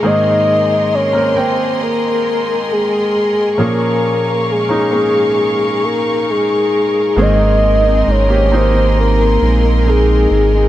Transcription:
Already playing: string section G#4 A#4
0.03 grand piano G#2 D#3 A#3 C4 G#4, string section D#5 C6, soft synth lead D#5
0.95 soft synth lead C#5
1.13 grand piano A#3 C4 A#4
1.35 grand piano A#3 C4 G5, soft synth lead C5
1.84 soft synth lead A#4
2.72 soft synth lead G#4
3.58 grand piano A#2 F3 A#3 C#4 G#4, string section A#4 F5 C#6
3.62 soft synth lead A#4
4.51 soft synth lead G#4
4.69 grand piano A#3 C#4 D#4
4.91 grand piano A#3 C#4 G#4
5.85 soft synth lead A#4
6.30 soft synth lead G#4
7.16 sub bass G#1, grand piano G#2 D#3 A#3 C4 G#4, steel-string acoustic guitar G#3 C4 D#4 A#4, string section D#5 C6
7.21 soft synth lead D#5
7.39 steel-string acoustic guitar C4 D#4 A#4
7.85 steel-string acoustic guitar C4 D#4 A#4
8.07 sub bass G#1, steel-string acoustic guitar G#3 D#4 A#4, soft synth lead C#5
8.29 grand piano A#3 C4 G4
8.52 steel-string acoustic guitar G#3 C4 D#4 A#4, grand piano A#3 C4 D#4, soft synth lead C5
8.75 steel-string acoustic guitar C4 D#4 A#4
9.00 soft synth lead A#4
9.19 steel-string acoustic guitar C4 D#4 A#4
9.42 sub bass A#1, steel-string acoustic guitar G#3 C4 D#4 A#4
9.64 steel-string acoustic guitar C4 D#4 A#4
9.86 steel-string acoustic guitar G#3 C4 D#4 A#4, soft synth lead G#4
10.30 sub bass G#1, steel-string acoustic guitar G#3 C4 D#4 A#4
10.53 steel-string acoustic guitar C4 D#4 A#4

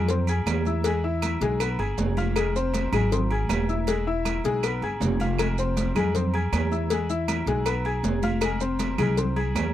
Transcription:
Already playing: upright bass F2
0.09 upright piano C4 C5 C6, cowbell, maracas
0.27 upright piano G#4 G#5 G#6, high conga, low agogo, maracas
0.46 upright bass E2, cowbell, high conga, low timbale, low agogo, claves, maracas
0.65 upright piano E4 E5 E6, high conga, maracas
0.84 upright piano G#3 G#4 G#5, cowbell, high conga, low agogo, maracas
1.04 upright piano E4 E5 E6, high conga
1.22 cowbell, high conga, low timbale, low agogo, claves, maracas
1.41 upright bass B1, upright piano G#3 G#4 G#5, cowbell, high conga, maracas
1.60 upright piano B3 B4 B5, cowbell, high conga, low agogo, claves, maracas
1.79 upright bass G1, upright piano G#4 G#5 G#6, high conga, low agogo
1.98 upright bass F1, cowbell, high conga, low timbale, maracas
2.17 upright piano F4 F5 F6, high conga, low agogo, maracas
2.36 upright piano G#3 G#4 G#5, cowbell, high conga, low agogo, claves, maracas
2.56 upright piano C4 C5 C6, high conga, maracas
2.74 cowbell, high conga, low timbale, low agogo, maracas
2.92 upright bass G#1, upright piano G#3 G#4 G#5, high conga, low conga, low agogo, claves, maracas
3.12 upright piano C4 C5 C6, cowbell, high conga, low conga, maracas
3.30 upright piano G#4 G#5 G#6, high conga, low agogo
3.49 upright bass E1, cowbell, high conga, low timbale, low agogo, claves, maracas
3.69 upright piano E4 E5 E6, high conga, maracas
3.87 upright piano G#3 G#4 G#5, cowbell, high conga, low agogo, maracas
4.07 upright piano E4 E5 E6, high conga
4.25 cowbell, high conga, low timbale, low agogo, claves, maracas
4.44 upright bass B1, upright piano G#3 G#4 G#5, cowbell, high conga, maracas
4.63 upright piano B3 B4 B5, cowbell, high conga, low agogo, claves, maracas
4.82 upright bass G1, upright piano G#4 G#5 G#6, high conga, low agogo
5.00 upright bass F1, cowbell, high conga, low timbale, maracas
5.20 upright piano F4 F5 F6, high conga, low agogo, maracas
5.39 upright piano G#3 G#4 G#5, cowbell, high conga, low agogo, claves, maracas
5.58 upright piano C4 C5 C6, high conga, maracas
5.77 cowbell, high conga, low timbale, low agogo, maracas
5.95 upright bass F2, upright piano G#3 G#4 G#5, high conga, low conga, low agogo, claves, maracas
6.15 upright piano C4 C5 C6, cowbell, high conga, low conga, maracas
6.34 upright piano G#4 G#5 G#6, high conga, low agogo
6.53 upright bass E2, cowbell, high conga, low timbale, low agogo, claves, maracas
6.72 upright piano E4 E5 E6, high conga, maracas
6.90 upright piano G#3 G#4 G#5, cowbell, high conga, low agogo, maracas
7.10 upright piano E4 E5 E6, high conga, maracas
7.28 cowbell, high conga, low timbale, low agogo, claves, maracas
7.46 upright bass B1, upright piano G#3 G#4 G#5, cowbell, high conga, maracas
7.66 upright piano B3 B4 B5, cowbell, high conga, low agogo, claves, maracas
7.85 upright piano G#4 G#5 G#6, high conga, low agogo
8.03 upright bass F1, cowbell, high conga, low timbale, maracas
8.22 upright piano F4 F5 F6, high conga, low agogo, maracas
8.41 upright piano G#3 G#4 G#5, cowbell, low agogo, claves, maracas
8.60 upright piano C4 C5 C6, high conga, maracas
8.79 cowbell, high conga, low timbale, low agogo, maracas
8.98 upright bass C2, upright piano G#3 G#4 G#5, high conga, low conga, low agogo, claves, maracas
9.17 upright piano C4 C5 C6, cowbell, high conga, low conga, maracas
9.36 upright piano G#4 G#5 G#6, high conga, low agogo
9.55 upright bass E2, cowbell, high conga, low timbale, low agogo, claves, maracas

